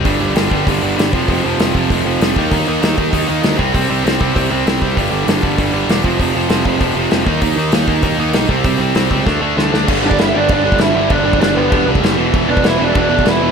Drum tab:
CC |----------------|----------------|----------------|----------------|
HH |o---o---o---o---|o---o---o---o---|o---o---o---o---|o---o---o---o---|
SD |----o-------o---|----o-------o---|----o-------o---|----o-------o---|
BD |o-----o-o-----o-|o-----o-o-----o-|o-----o-o-----o-|o-----o-o-----o-|

CC |----------------|----------------|----------------|----------------|
HH |o---o---o---o---|o---o---o---o---|o---o---o---o---|o---o-----------|
SD |----o-------o---|----o-------o---|----o-------o---|----o---o---o-o-|
BD |o-----o-o-----o-|o-----o-o-----o-|o-----o-o-----o-|o-----o-o-------|

CC |x---x---x---x---|x---x---x---x---|x---x---x---x---|
HH |----------------|----------------|----------------|
SD |----o-------o---|----o-------o---|----o-------o---|
BD |o--o----o--o----|o--o----o--o----|o--o----o--o----|